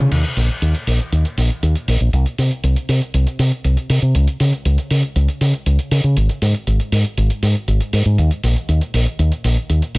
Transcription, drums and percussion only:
0.12 closed hi-hat, crash
0.24 closed hi-hat
0.37 open hi-hat
0.49 closed hi-hat
0.62 closed hi-hat
0.75 closed hi-hat
0.87 open hi-hat
1.00 closed hi-hat
1.12 closed hi-hat
1.25 closed hi-hat
1.38 open hi-hat
1.50 closed hi-hat
1.63 closed hi-hat
1.75 closed hi-hat
1.88 open hi-hat
2.01 closed hi-hat
2.13 closed hi-hat
2.26 closed hi-hat
2.38 open hi-hat
2.51 closed hi-hat
2.64 closed hi-hat
2.76 closed hi-hat
2.89 open hi-hat
3.01 closed hi-hat
3.14 closed hi-hat
3.27 closed hi-hat
3.39 open hi-hat
3.52 closed hi-hat
3.64 closed hi-hat
3.77 closed hi-hat
3.90 open hi-hat
4.02 closed hi-hat
4.15 closed hi-hat
4.28 closed hi-hat
4.40 open hi-hat
4.53 closed hi-hat
4.65 closed hi-hat
4.78 closed hi-hat
4.91 open hi-hat
5.03 closed hi-hat
5.16 closed hi-hat
5.28 closed hi-hat
5.41 open hi-hat
5.54 closed hi-hat
5.66 closed hi-hat
5.79 closed hi-hat
5.91 open hi-hat
6.04 closed hi-hat
6.17 closed hi-hat
6.29 closed hi-hat
6.42 open hi-hat
6.54 closed hi-hat
6.67 closed hi-hat
6.80 closed hi-hat
6.92 open hi-hat
7.05 closed hi-hat
7.18 closed hi-hat
7.30 closed hi-hat
7.43 open hi-hat
7.55 closed hi-hat
7.68 closed hi-hat
7.80 closed hi-hat
7.93 open hi-hat
8.06 closed hi-hat
8.18 closed hi-hat
8.31 closed hi-hat
8.44 open hi-hat
8.56 closed hi-hat
8.69 closed hi-hat
8.81 closed hi-hat
8.94 open hi-hat
9.07 closed hi-hat
9.19 closed hi-hat
9.32 closed hi-hat
9.44 open hi-hat
9.57 closed hi-hat
9.70 closed hi-hat
9.82 closed hi-hat
9.95 open hi-hat

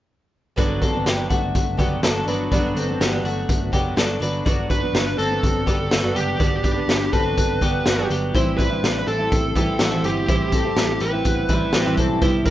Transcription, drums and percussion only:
0.58 kick, closed hi-hat
0.82 kick, closed hi-hat
1.06 snare, closed hi-hat
1.30 kick, closed hi-hat
1.55 kick, closed hi-hat
1.79 kick, closed hi-hat
2.03 snare, closed hi-hat
2.28 closed hi-hat
2.52 kick, closed hi-hat
2.77 closed hi-hat
3.01 snare, closed hi-hat
3.25 closed hi-hat
3.49 kick, closed hi-hat
3.73 kick, closed hi-hat
3.97 snare, closed hi-hat
4.22 closed hi-hat
4.46 kick, closed hi-hat
4.70 kick, closed hi-hat
4.95 snare, closed hi-hat
5.19 closed hi-hat
5.43 kick, closed hi-hat
5.67 kick, closed hi-hat
5.91 snare, closed hi-hat
6.16 closed hi-hat
6.40 kick, closed hi-hat
6.64 kick, closed hi-hat
6.89 snare, closed hi-hat
7.13 kick, closed hi-hat
7.37 kick, closed hi-hat
7.61 kick, closed hi-hat
7.86 snare, closed hi-hat
8.10 closed hi-hat
8.35 kick, closed hi-hat
8.59 kick, closed hi-hat
8.84 snare, closed hi-hat
9.07 closed hi-hat
9.32 kick, closed hi-hat
9.56 kick, closed hi-hat
9.79 snare, closed hi-hat
10.04 closed hi-hat
10.28 kick, closed hi-hat
10.52 kick, closed hi-hat
10.76 snare, closed hi-hat
11.00 closed hi-hat
11.25 kick, closed hi-hat
11.49 kick, closed hi-hat
11.73 snare, closed hi-hat
11.97 kick, closed hi-hat
12.22 kick, closed hi-hat
12.46 kick, closed hi-hat

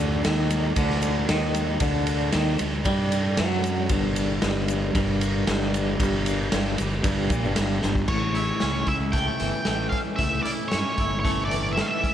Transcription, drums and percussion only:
0.12 shaker
0.24 snare, ride, shaker
0.50 ride, shaker
0.76 kick, ride, shaker
0.90 snare
1.02 ride, shaker
1.29 snare, ride, shaker
1.54 ride, shaker
1.80 kick, ride, shaker
2.07 ride, shaker
2.20 shaker
2.32 snare, ride, shaker
2.58 ride, shaker
2.85 kick, ride, shaker
3.12 ride, shaker
3.37 snare, ride, shaker
3.64 ride, shaker
3.89 kick, ride, shaker
4.16 ride, shaker
4.30 shaker
4.42 snare, ride, shaker
4.68 ride, shaker
4.95 kick, ride, shaker
5.21 ride, shaker
5.47 snare, ride, shaker
5.74 ride, shaker
6.00 kick, ride, shaker
6.26 ride, shaker
6.42 shaker
6.52 snare, ride, shaker
6.78 ride, shaker
6.93 shaker
7.04 kick, ride, shaker
7.30 kick, ride, shaker
7.45 shaker
7.56 snare, ride, shaker
7.82 snare, shaker
7.95 kick, shaker
8.08 kick, crash
8.35 closed hi-hat
8.60 snare, closed hi-hat
8.87 kick, closed hi-hat
9.13 kick, closed hi-hat
9.40 closed hi-hat
9.65 snare, closed hi-hat
9.92 kick, closed hi-hat
10.18 kick, closed hi-hat
10.45 closed hi-hat
10.71 snare, closed hi-hat
10.98 kick, closed hi-hat
11.25 kick, closed hi-hat
11.51 closed hi-hat
11.77 snare, closed hi-hat
12.04 kick, closed hi-hat

